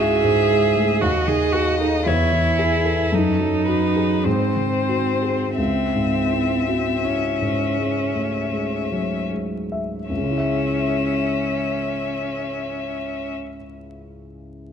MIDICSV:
0, 0, Header, 1, 4, 480
1, 0, Start_track
1, 0, Key_signature, 4, "minor"
1, 0, Tempo, 1047120
1, 945, Time_signature, 3, 2, 24, 8
1, 1431, Tempo, 1129944
1, 1911, Tempo, 1324503
1, 2391, Tempo, 1466993
1, 3351, Tempo, 1578947
1, 3831, Tempo, 1481481
1, 5333, End_track
2, 0, Start_track
2, 0, Title_t, "Violin"
2, 0, Program_c, 0, 40
2, 0, Note_on_c, 0, 76, 49
2, 467, Note_off_c, 0, 76, 0
2, 469, Note_on_c, 0, 75, 58
2, 950, Note_on_c, 0, 73, 46
2, 957, Note_off_c, 0, 75, 0
2, 1189, Note_on_c, 0, 68, 37
2, 1196, Note_off_c, 0, 73, 0
2, 1432, Note_on_c, 0, 69, 38
2, 1438, Note_off_c, 0, 68, 0
2, 1662, Note_off_c, 0, 69, 0
2, 1664, Note_on_c, 0, 71, 34
2, 1908, Note_on_c, 0, 72, 42
2, 1914, Note_off_c, 0, 71, 0
2, 2390, Note_off_c, 0, 72, 0
2, 2392, Note_on_c, 0, 76, 39
2, 3581, Note_off_c, 0, 76, 0
2, 3829, Note_on_c, 0, 76, 36
2, 4884, Note_off_c, 0, 76, 0
2, 5333, End_track
3, 0, Start_track
3, 0, Title_t, "Cello"
3, 0, Program_c, 1, 42
3, 0, Note_on_c, 1, 68, 77
3, 465, Note_on_c, 1, 66, 62
3, 472, Note_off_c, 1, 68, 0
3, 586, Note_on_c, 1, 68, 63
3, 593, Note_off_c, 1, 66, 0
3, 700, Note_on_c, 1, 66, 58
3, 706, Note_off_c, 1, 68, 0
3, 822, Note_off_c, 1, 66, 0
3, 831, Note_on_c, 1, 63, 60
3, 947, Note_off_c, 1, 63, 0
3, 950, Note_on_c, 1, 64, 70
3, 1444, Note_on_c, 1, 63, 65
3, 1450, Note_off_c, 1, 64, 0
3, 1913, Note_on_c, 1, 60, 56
3, 1918, Note_off_c, 1, 63, 0
3, 2390, Note_off_c, 1, 60, 0
3, 2392, Note_on_c, 1, 60, 49
3, 2871, Note_on_c, 1, 61, 41
3, 2876, Note_off_c, 1, 60, 0
3, 3595, Note_off_c, 1, 61, 0
3, 3830, Note_on_c, 1, 61, 43
3, 4885, Note_off_c, 1, 61, 0
3, 5333, End_track
4, 0, Start_track
4, 0, Title_t, "Grand piano"
4, 0, Program_c, 2, 0
4, 0, Control_c, 2, 64, 127
4, 0, Note_on_c, 2, 37, 45
4, 0, Note_on_c, 2, 44, 37
4, 0, Note_on_c, 2, 64, 43
4, 0, Note_on_c, 2, 66, 35
4, 109, Note_off_c, 2, 44, 0
4, 109, Note_on_c, 2, 44, 39
4, 179, Note_off_c, 2, 64, 0
4, 230, Note_on_c, 2, 56, 37
4, 298, Note_off_c, 2, 44, 0
4, 346, Note_on_c, 2, 57, 33
4, 418, Note_off_c, 2, 56, 0
4, 445, Note_off_c, 2, 37, 0
4, 464, Note_off_c, 2, 57, 0
4, 467, Note_on_c, 2, 39, 44
4, 471, Control_c, 2, 64, 0
4, 472, Note_off_c, 2, 66, 0
4, 550, Control_c, 2, 64, 127
4, 585, Note_on_c, 2, 51, 35
4, 704, Note_on_c, 2, 68, 37
4, 776, Note_off_c, 2, 51, 0
4, 827, Note_on_c, 2, 69, 30
4, 897, Note_off_c, 2, 68, 0
4, 932, Note_off_c, 2, 39, 0
4, 947, Note_off_c, 2, 69, 0
4, 947, Note_on_c, 2, 40, 41
4, 953, Control_c, 2, 64, 0
4, 1026, Control_c, 2, 64, 127
4, 1065, Note_on_c, 2, 52, 33
4, 1186, Note_on_c, 2, 68, 36
4, 1260, Note_off_c, 2, 52, 0
4, 1304, Note_on_c, 2, 69, 30
4, 1382, Note_off_c, 2, 68, 0
4, 1418, Note_off_c, 2, 40, 0
4, 1429, Note_off_c, 2, 69, 0
4, 1431, Note_on_c, 2, 42, 43
4, 1439, Control_c, 2, 64, 0
4, 1503, Control_c, 2, 64, 127
4, 1547, Note_on_c, 2, 54, 30
4, 1667, Note_on_c, 2, 66, 36
4, 1737, Note_off_c, 2, 54, 0
4, 1788, Note_on_c, 2, 68, 28
4, 1862, Note_off_c, 2, 66, 0
4, 1897, Note_off_c, 2, 42, 0
4, 1912, Note_off_c, 2, 68, 0
4, 1913, Note_on_c, 2, 44, 36
4, 1920, Control_c, 2, 64, 0
4, 1997, Control_c, 2, 64, 127
4, 2024, Note_on_c, 2, 51, 26
4, 2140, Note_on_c, 2, 66, 27
4, 2213, Note_off_c, 2, 51, 0
4, 2263, Note_on_c, 2, 68, 23
4, 2339, Note_off_c, 2, 66, 0
4, 2378, Note_off_c, 2, 44, 0
4, 2392, Note_off_c, 2, 68, 0
4, 2392, Note_on_c, 2, 37, 37
4, 2400, Control_c, 2, 64, 0
4, 2474, Control_c, 2, 64, 127
4, 2514, Note_on_c, 2, 44, 25
4, 2630, Note_on_c, 2, 64, 27
4, 2702, Note_off_c, 2, 44, 0
4, 2751, Note_on_c, 2, 66, 24
4, 2820, Note_off_c, 2, 64, 0
4, 2869, Note_off_c, 2, 66, 0
4, 2869, Note_on_c, 2, 64, 25
4, 2992, Note_on_c, 2, 44, 23
4, 3060, Note_off_c, 2, 64, 0
4, 3112, Note_on_c, 2, 56, 24
4, 3182, Note_off_c, 2, 44, 0
4, 3232, Note_on_c, 2, 57, 21
4, 3305, Note_off_c, 2, 56, 0
4, 3353, Note_off_c, 2, 57, 0
4, 3353, Note_on_c, 2, 56, 25
4, 3475, Note_on_c, 2, 54, 22
4, 3544, Note_off_c, 2, 56, 0
4, 3595, Note_off_c, 2, 54, 0
4, 3596, Note_on_c, 2, 56, 22
4, 3718, Note_on_c, 2, 76, 25
4, 3787, Note_off_c, 2, 56, 0
4, 3820, Note_off_c, 2, 37, 0
4, 3833, Note_off_c, 2, 76, 0
4, 3833, Note_on_c, 2, 37, 29
4, 3840, Control_c, 2, 64, 0
4, 3857, Note_on_c, 2, 49, 31
4, 3879, Note_on_c, 2, 56, 33
4, 3902, Note_on_c, 2, 64, 32
4, 3917, Control_c, 2, 64, 127
4, 3924, Note_on_c, 2, 76, 31
4, 4888, Note_off_c, 2, 37, 0
4, 4912, Note_off_c, 2, 49, 0
4, 4934, Note_off_c, 2, 56, 0
4, 4957, Note_off_c, 2, 64, 0
4, 4979, Note_off_c, 2, 76, 0
4, 5333, End_track
0, 0, End_of_file